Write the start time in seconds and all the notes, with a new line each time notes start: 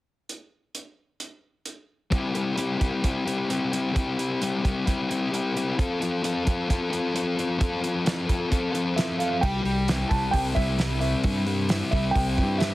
0.29 closed hi-hat
0.75 closed hi-hat
1.20 closed hi-hat
1.66 closed hi-hat
2.11 G3 C4 E4 G4, kick, closed hi-hat
2.33 C4 E4 G4, closed hi-hat
2.56 G3 C4 E4 G4, closed hi-hat
2.79 C4 E4 G4, kick, closed hi-hat
3.02 G3 C4 E4 G4, kick, closed hi-hat
3.25 G3 C4 E4 G4, closed hi-hat
3.48 G3 C4 E4 G4, closed hi-hat
3.71 C4 E4 G4, closed hi-hat
3.93 G3 C4 E4 G4, kick, closed hi-hat
4.17 C4 E4 G4, closed hi-hat
4.41 G3 C4 E4 G4, closed hi-hat
4.63 C4 E4 G4, kick, closed hi-hat
4.86 G3 C4 E4 G4, kick, closed hi-hat
5.09 G3 C4 E4 G4, closed hi-hat
5.31 G3 C4 E4 G4, closed hi-hat
5.55 C4 E4 G4, closed hi-hat
5.78 F3 C4 F4 A4, kick, closed hi-hat
6.00 C4 F4 A4, closed hi-hat
6.22 F3 C4 F4 A4, closed hi-hat
6.45 C4 F4 A4, kick, closed hi-hat
6.69 F3 C4 F4 A4, kick, closed hi-hat
6.90 F3 C4 F4 A4, closed hi-hat
7.13 F3 C4 F4 A4, closed hi-hat
7.37 C4 F4 A4, closed hi-hat
7.59 F3 C4 F4 A4, kick, closed hi-hat
7.82 C4 F4 A4, closed hi-hat
8.03 F3 C4 F4 A4, closed hi-hat
8.07 snare
8.26 C4 F4 A4, kick, closed hi-hat
8.49 F3 C4 F4 A4, kick, closed hi-hat
8.73 F3 C4 F4 A4, closed hi-hat
8.96 F3 C4 F4 A4 E5, snare, closed hi-hat
9.18 C4 F4 A4 F5, closed hi-hat
9.41 C2 G3 G5, kick, crash
9.64 C2 G3, open hi-hat
9.88 E4, snare, open hi-hat
10.09 C2 G3 A5, kick, open hi-hat
10.31 C2 C4 G5, kick, open hi-hat
10.55 C2 E4 E5, kick, open hi-hat
10.78 G3, snare, open hi-hat
11.00 C4 E5, open hi-hat
11.24 G2 G3, kick, open hi-hat
11.47 G3, open hi-hat
11.69 E4, snare, open hi-hat
11.91 C2 G3 E5, kick, open hi-hat
12.11 G5
12.15 C2 C4, kick, open hi-hat
12.37 G2 E4, kick, open hi-hat
12.58 G3 E5, snare, open hi-hat